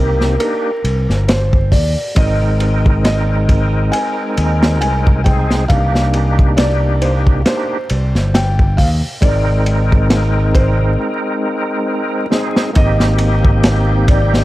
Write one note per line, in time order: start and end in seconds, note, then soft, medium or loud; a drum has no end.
0.00 0.36 C2 medium
0.00 0.35 A#3 medium
0.00 0.35 C4 medium
0.00 0.36 D#4 medium
0.00 0.37 G4 medium
0.00 0.39 A#4 medium
0.21 snare soft
0.38 0.71 A#3 medium
0.38 0.71 D4 medium
0.38 0.72 D#4 medium
0.38 0.72 G4 medium
0.38 1.31 A#4 medium
0.38 ride medium
0.84 1.06 C2 medium
0.84 ride medium
1.09 1.73 G1 loud
1.09 snare soft
1.28 1.74 C5 medium
1.28 snare loud
1.28 ride medium
1.53 kick medium
1.72 1.94 D#2 medium
1.72 2.13 D5 medium
1.72 kick medium
1.72 open hi-hat medium
2.15 3.90 G#1 medium
2.15 5.20 G#3 medium
2.15 5.21 C4 medium
2.15 5.21 D#4 medium
2.15 5.22 A#4 medium
2.15 3.03 D#5 medium
2.15 kick loud
2.15 ride medium
2.60 ride medium
2.86 kick medium
3.04 3.96 D#5 medium
3.04 snare loud
3.04 ride medium
3.49 kick medium
3.49 ride medium
3.92 4.79 G#5 loud
3.92 ride medium
4.37 4.81 D#2 medium
4.37 ride medium
4.63 snare loud
4.81 5.66 C2 medium
4.81 5.27 G#5 medium
4.81 ride medium
5.07 kick medium
5.24 5.65 G#3 medium
5.24 5.65 C4 medium
5.24 5.65 D#4 medium
5.24 5.65 G#4 medium
5.24 5.70 G5 medium
5.24 kick medium
5.24 ride medium
5.51 snare soft
5.68 7.43 C2 medium
5.68 7.41 A#3 medium
5.68 7.41 D4 medium
5.68 7.42 D#4 medium
5.68 7.43 G4 medium
5.68 6.60 F5 loud
5.68 kick medium
5.68 ride medium
5.95 snare soft
6.14 ride medium
6.39 kick medium
6.57 7.03 D5 medium
6.57 snare loud
6.57 ride medium
7.02 7.12 C5 medium
7.02 ride medium
7.27 kick medium
7.45 7.77 A#3 medium
7.45 7.78 D4 medium
7.45 7.78 D#4 medium
7.45 7.78 G4 medium
7.45 8.37 C5 medium
7.45 snare medium
7.45 ride medium
7.90 8.12 C2 medium
7.90 ride medium
8.15 8.80 G1 loud
8.15 snare soft
8.34 8.80 G5 medium
8.34 snare loud
8.34 ride medium
8.59 kick medium
8.77 9.01 D#2 medium
8.77 8.87 F5 medium
8.77 kick medium
8.77 open hi-hat medium
9.21 10.95 G#1 medium
9.21 12.26 G#3 medium
9.21 12.27 C4 medium
9.21 12.27 D#4 medium
9.21 12.28 A#4 medium
9.21 10.59 D5 medium
9.21 kick loud
9.21 ride medium
9.66 ride medium
9.92 kick medium
10.10 snare loud
10.10 ride medium
10.55 10.96 C5 medium
10.55 kick medium
10.55 ride medium
12.30 12.70 G#3 medium
12.30 12.71 C4 medium
12.30 12.71 D#4 medium
12.30 12.71 G#4 loud
12.30 snare medium
12.56 snare medium
12.73 14.44 G#1 medium
12.73 14.44 A#3 medium
12.73 14.44 C4 medium
12.73 14.44 D#4 medium
12.73 14.44 G4 medium
12.73 14.13 D#5 medium
12.73 14.44 G6 medium
12.73 kick loud
12.73 ride medium
13.00 snare medium
13.18 ride medium
13.45 kick medium
13.63 snare loud
13.63 ride medium
14.08 14.44 D5 medium
14.08 kick loud
14.08 ride medium
14.34 snare soft